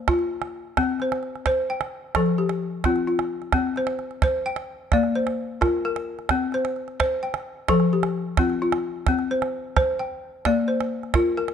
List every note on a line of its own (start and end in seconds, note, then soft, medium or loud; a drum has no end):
0.00 0.32 C5 medium
0.08 0.55 F4 medium
0.08 calabash thump medium
0.08 calabash click medium
0.19 calabash click soft
0.42 calabash click soft
0.77 1.24 C4 medium
0.77 calabash thump medium
0.77 calabash click medium
1.00 1.45 C5 medium
1.00 calabash click soft
1.12 calabash click medium
1.23 calabash click soft
1.36 calabash click soft
1.46 1.93 C5 medium
1.46 calabash thump medium
1.46 calabash click medium
1.70 2.39 G5 medium
1.81 calabash click medium
2.15 2.62 F3 medium
2.15 2.85 A4 medium
2.15 calabash thump medium
2.15 calabash click medium
2.26 calabash click soft
2.38 3.08 G4 medium
2.49 calabash click medium
2.84 3.31 C4 medium
2.84 3.06 F4 medium
2.84 calabash thump medium
2.84 calabash click medium
2.96 calabash click soft
3.07 3.77 F4 medium
3.19 calabash click medium
3.42 calabash click soft
3.52 4.00 C4 medium
3.52 calabash thump medium
3.52 calabash click medium
3.76 4.22 C5 medium
3.76 calabash click soft
3.87 calabash click medium
3.99 calabash click soft
4.11 calabash click soft
4.22 4.69 C5 medium
4.22 calabash thump medium
4.22 calabash click medium
4.46 5.15 G5 medium
4.56 calabash click medium
4.92 5.39 A#3 medium
4.92 5.62 D5 medium
4.92 calabash thump medium
4.92 calabash click medium
5.03 calabash click soft
5.15 5.84 C5 medium
5.27 calabash click medium
5.61 6.07 F4 medium
5.61 5.84 A#4 medium
5.61 calabash thump medium
5.61 calabash click medium
5.85 6.54 A#4 medium
5.96 calabash click medium
6.19 calabash click soft
6.29 6.77 C4 medium
6.29 calabash thump medium
6.29 calabash click medium
6.52 6.98 C5 medium
6.52 calabash click soft
6.65 calabash click medium
6.76 calabash click soft
6.88 calabash click soft
7.00 7.46 C5 medium
7.00 calabash thump medium
7.00 calabash click medium
7.23 7.92 G5 medium
7.34 calabash click medium
7.68 8.15 F3 medium
7.68 8.38 A4 medium
7.68 calabash thump medium
7.68 calabash click medium
7.80 calabash click soft
7.93 8.61 G4 medium
8.03 calabash click medium
8.37 8.84 C4 medium
8.37 8.61 F4 medium
8.37 calabash thump medium
8.37 calabash click medium
8.50 calabash click soft
8.62 9.30 F4 medium
8.72 calabash click medium
9.07 9.54 C4 medium
9.07 calabash thump medium
9.07 calabash click medium
9.19 calabash click soft
9.31 9.75 C5 medium
9.42 calabash click medium
9.76 10.22 C5 medium
9.76 calabash thump medium
9.76 calabash click medium
9.99 10.68 G5 medium
9.99 calabash click soft
10.45 10.92 A#3 medium
10.45 11.15 D5 medium
10.45 calabash thump medium
10.45 calabash click medium
10.68 11.37 C5 medium
10.81 calabash click medium
11.03 calabash click soft
11.14 11.54 F4 medium
11.14 11.36 A#4 medium
11.14 calabash thump medium
11.14 calabash click medium
11.37 11.54 A#4 medium
11.37 calabash click soft
11.48 calabash click medium